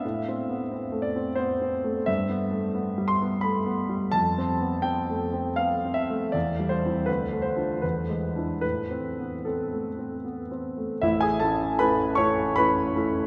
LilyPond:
<<
  \new Staff \with { instrumentName = "Grand piano" } { \time 3/4 \key a \minor \tempo 4 = 82 e''4. d''8 c''8 r8 | e''4. c'''8 b''4 | a''4 g''4 f''8 e''8 | d''8 c''8 b'8 c''8 b'4 |
b'4 a'4 r4 | \key a \major <e' e''>16 <gis' gis''>16 <a' a''>8 <b' b''>8 <cis'' cis'''>8 <b' b''>4 | }
  \new Staff \with { instrumentName = "Grand piano" } { \time 3/4 \key a \minor \tuplet 3/2 { a,8 c'8 b8 c'8 a8 c'8 b8 c'8 a8 } | \tuplet 3/2 { g,8 b8 a8 b8 g8 b8 a8 b8 g8 } | \tuplet 3/2 { f,8 c'8 b8 c'8 a8 c'8 b8 c'8 a8 } | \tuplet 3/2 { e,8 g8 <c' e'>8 d,8 a8 <d' f'>8 e,8 gis8 <d' e'>8 } |
\tuplet 3/2 { a,8 c'8 b8 c'8 a8 c'8 b8 c'8 a8 } | \key a \major <a,, a,>8 <a cis' e'>8 <a cis' e'>8 <a cis' e'>8 <a cis' e'>8 <a cis' e'>8 | }
>>